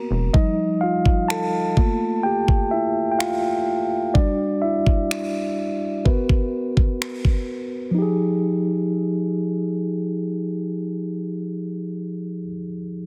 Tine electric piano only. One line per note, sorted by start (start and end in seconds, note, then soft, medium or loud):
0.00 0.30 A#3 medium
0.00 0.30 B3 medium
0.00 0.31 F#4 medium
0.00 0.35 A#4 medium
0.00 0.35 A#5 medium
0.34 1.73 F3 medium
0.34 1.73 G3 medium
0.34 0.79 D#4 medium
0.34 0.83 D#5 loud
0.81 1.27 F4 medium
0.81 1.26 F5 medium
1.28 2.21 A4 medium
1.28 2.27 A5 loud
1.77 2.40 A3 medium
1.77 2.41 A#3 medium
1.77 2.41 F4 medium
2.23 2.69 G4 medium
2.23 2.73 G5 loud
2.71 3.11 E4 medium
2.71 3.09 E5 medium
3.12 3.19 G5 medium
3.19 3.88 F4 medium
3.19 3.87 F5 loud
4.14 4.78 G3 medium
4.14 4.60 D4 medium
4.14 4.79 F#4 medium
4.14 4.64 D5 medium
4.62 6.02 E4 medium
4.62 6.09 E5 medium
6.05 7.45 B3 medium
6.05 7.92 F#4 medium
6.05 7.92 A#4 soft
6.05 7.44 B4 medium
7.91 12.39 F3 medium
7.91 12.42 D#4 medium
7.98 12.46 G4 medium
7.98 12.50 G#4 medium